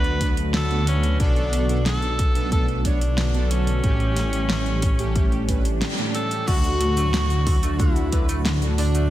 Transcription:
Already playing: D2 D3 F#3 A3 B3 D4 F#4 B4
0.04 closed hi-hat
0.21 D3 B3 D4 B4, kick, closed hi-hat
0.37 closed hi-hat
0.54 A4, snare, closed hi-hat
0.71 D3 B3 D4 F#4, closed hi-hat
0.87 C#4, closed hi-hat
1.03 closed hi-hat
1.20 B1 B2 B3 D4 A4, kick, closed hi-hat
1.36 closed hi-hat
1.53 closed hi-hat
1.69 B2 B3 D4 A4, closed hi-hat
1.86 A4, snare, closed hi-hat
2.02 closed hi-hat
2.19 kick, closed hi-hat
2.35 B2 B3 D4 A4, closed hi-hat
2.52 A4, kick, closed hi-hat
2.68 closed hi-hat
2.85 B2 B3 D4 C#5, kick, closed hi-hat
3.01 closed hi-hat
3.18 snare, closed hi-hat
3.34 B2 B3 D4 A4, closed hi-hat
3.51 C#4, closed hi-hat
3.67 closed hi-hat
3.84 A1 A2 E3 G3 A3 C#4 G4, kick, closed hi-hat
4.00 closed hi-hat
4.16 snare, closed hi-hat
4.33 A2 A3 C#4 G4, closed hi-hat
4.50 snare, closed hi-hat
4.66 closed hi-hat
4.82 kick, closed hi-hat
4.99 A2 A3 C#4 G4, closed hi-hat
5.16 kick, closed hi-hat, swell
5.32 closed hi-hat
5.49 A2 A3 C#4 B4, kick, closed hi-hat
5.65 closed hi-hat
5.82 snare, closed hi-hat
5.98 A2 A3 C#4 G4, closed hi-hat
6.14 A4, closed hi-hat
6.31 closed hi-hat
6.47 D2 A2 D3 F#3 A3 D4 F#4, kick, closed hi-hat, crash, shaker
6.64 closed hi-hat, shaker
6.81 D3, closed hi-hat
6.97 D3 A3 D4 F#4, closed hi-hat, shaker
7.14 D3, snare, closed hi-hat, shaker
7.30 closed hi-hat, shaker
7.47 D3, kick, open hi-hat
7.63 D3 A3 D4 F#4, closed hi-hat, shaker
7.79 D3 E4, kick, closed hi-hat, shaker
7.96 closed hi-hat, shaker
8.12 D3 A3 D4 B4, kick, closed hi-hat
8.29 A3, closed hi-hat, shaker
8.45 D3, snare, closed hi-hat, shaker
8.62 D3 A3 D4 F#4, closed hi-hat, shaker
8.78 D3 D4, open hi-hat
8.95 A3, closed hi-hat, shaker

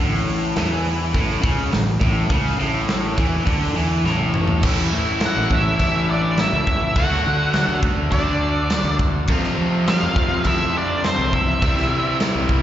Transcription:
Already playing: A1
0.00 A2
0.14 snare
0.28 open hi-hat
0.56 E2 E3, snare, open hi-hat
0.85 open hi-hat
1.14 A1 A2, kick, open hi-hat
1.30 snare
1.42 C#2 C#3, kick, open hi-hat
1.72 A1 A2, snare, open hi-hat
2.01 A1 A2, kick, open hi-hat
2.30 C#2 C#3, kick, open hi-hat
2.46 snare
2.60 A1 A2, open hi-hat
2.88 snare, open hi-hat
3.17 E2 E3, kick, open hi-hat
3.46 D2 D3, kick, open hi-hat
3.62 snare
3.75 E2 E3, open hi-hat
4.04 A1 A2, snare
4.19 high tom
4.34 mid tom
4.48 floor tom
4.63 A1 A2 E3 A3 C#4, kick, crash
4.67 E4
4.79 snare
4.92 A2
5.21 snare, crash
5.26 F#4 F#5
5.36 A1
5.50 A1 E4, kick
5.55 E5
5.79 kick, crash
6.10 D4 D5
6.37 E4 E5, snare, crash
6.53 C#2
6.67 kick
6.96 D2 D3 A3 D4 F#4 F#5, kick, crash
7.00 F#4
7.11 snare
7.27 D3
7.53 snare, crash
7.68 D2
7.83 D2, kick
8.12 D4 D5, kick, crash
8.70 snare, crash
8.84 D2
8.99 kick
9.28 F2 C3 F3 A3 C4, kick, crash
9.32 F4
9.43 snare
9.58 F3
9.88 F4 F5, snare, crash
10.03 F2
10.16 F2, kick
10.44 E4 E5, kick, crash
10.76 D4 D5
11.04 C4 C5, snare, crash
11.18 C2
11.33 E4 E5, kick
11.62 C2 C3 E3 G3 C4 E4, kick, crash
11.78 snare
11.91 C3
12.20 snare, crash
12.35 C2
12.49 C2, kick

